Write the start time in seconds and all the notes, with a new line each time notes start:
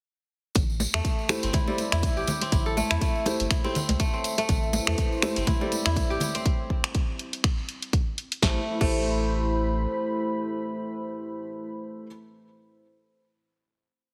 0.55 A1, kick, closed hi-hat, tambourine, low conga
0.70 tambourine
0.80 tambourine, muted conga, high conga
0.94 E2 A3, finger snap, closed hi-hat
1.05 kick, closed hi-hat, tambourine
1.19 tambourine
1.29 A3 E4 G4 C5, finger snap, closed hi-hat, tambourine, muted conga, high conga
1.43 G1 C4, closed hi-hat, tambourine
1.53 E4, kick, closed hi-hat, tambourine, high conga, low conga
1.67 G3 A3 E4 G4 C5, tambourine, muted conga
1.78 closed hi-hat, tambourine, high conga
1.92 E2 E4, finger snap, closed hi-hat, tambourine
2.03 kick, closed hi-hat, tambourine, muted conga
2.17 A1 G4, tambourine
2.27 closed hi-hat, tambourine, high conga, low conga
2.41 C4, closed hi-hat, tambourine, muted conga
2.52 A1 E4, kick, closed hi-hat, tambourine, low conga
2.66 A4, tambourine
2.77 A3, tambourine, muted conga, high conga
2.91 E2 E4, finger snap, closed hi-hat
3.01 A3, kick, closed hi-hat, tambourine, high conga
3.16 tambourine
3.26 A3 E4 G4 C5, closed hi-hat, tambourine, muted conga, high conga
3.40 G1, closed hi-hat, tambourine
3.50 E4, finger snap, kick, closed hi-hat, tambourine
3.64 A3 C4 E4 G4 C5, tambourine, muted conga
3.75 closed hi-hat, tambourine, low conga
3.89 C2, closed hi-hat, tambourine, high conga
4.00 A3, kick, closed hi-hat, tambourine, muted conga
4.13 C4, tambourine
4.24 closed hi-hat, tambourine
4.38 A3, closed hi-hat, tambourine, muted conga
4.49 A1 A3 E4 B4 C5, kick, closed hi-hat, tambourine, low conga
4.63 tambourine
4.73 tambourine, muted conga, high conga
4.87 E2 A3, finger snap, closed hi-hat
4.98 kick, closed hi-hat, tambourine
5.12 tambourine
5.22 A3 E4 G4 C5, finger snap, closed hi-hat, tambourine, muted conga, high conga
5.36 G1 C4, closed hi-hat, tambourine
5.47 E4, kick, closed hi-hat, tambourine, high conga, low conga
5.61 G3 A3 E4 G4 C5, tambourine, muted conga
5.72 closed hi-hat, tambourine, high conga
5.86 E2 E4, finger snap, closed hi-hat
5.96 kick, closed hi-hat, tambourine, muted conga
6.10 A1 G4, tambourine
6.20 closed hi-hat, tambourine, high conga, low conga
6.35 C4, closed hi-hat, tambourine, muted conga
6.46 kick, closed hi-hat
6.70 kick
6.84 finger snap, closed hi-hat
6.95 kick, closed hi-hat
7.19 closed hi-hat
7.33 closed hi-hat
7.44 finger snap, kick, closed hi-hat
7.69 closed hi-hat
7.82 closed hi-hat
7.93 kick, closed hi-hat
8.18 closed hi-hat
8.32 closed hi-hat
8.42 A1 A3 E4 G4 C5 B5, kick, snare
8.81 A1 A3 E4 G4 C5, kick, crash